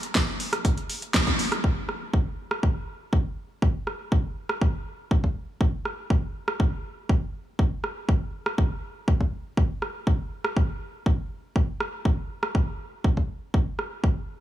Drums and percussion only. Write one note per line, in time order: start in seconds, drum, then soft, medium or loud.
0.03 closed hi-hat medium
0.15 kick loud
0.15 snare loud
0.15 closed hi-hat medium
0.40 open hi-hat loud
0.53 cross-stick medium
0.53 closed hi-hat medium
0.65 kick loud
0.65 closed hi-hat medium
0.78 closed hi-hat soft
0.90 open hi-hat loud
1.02 closed hi-hat medium
1.14 kick loud
1.14 snare loud
1.14 closed hi-hat medium
1.27 kick medium
1.27 closed hi-hat soft
1.39 open hi-hat loud
1.52 cross-stick medium
1.52 closed hi-hat medium
1.64 kick loud
1.89 cross-stick medium
2.14 kick loud
2.51 cross-stick medium
2.63 kick loud
3.13 kick loud
3.62 kick loud
3.87 cross-stick medium
4.12 kick loud
4.49 cross-stick medium
4.61 kick loud
5.11 kick loud
5.24 kick medium
5.61 kick loud
5.85 cross-stick medium
6.10 kick loud
6.48 cross-stick medium
6.60 kick loud
7.09 kick loud
7.59 kick loud
7.84 cross-stick medium
8.09 kick loud
8.46 cross-stick medium
8.58 kick loud
9.08 kick loud
9.21 kick medium
9.57 kick loud
9.82 cross-stick medium
10.07 kick loud
10.44 cross-stick medium
10.57 kick loud
11.06 kick loud
11.56 kick loud
11.80 cross-stick medium
12.05 kick loud
12.43 cross-stick medium
12.55 kick loud
13.04 kick loud
13.17 kick medium
13.54 kick loud
13.79 cross-stick medium
14.04 kick loud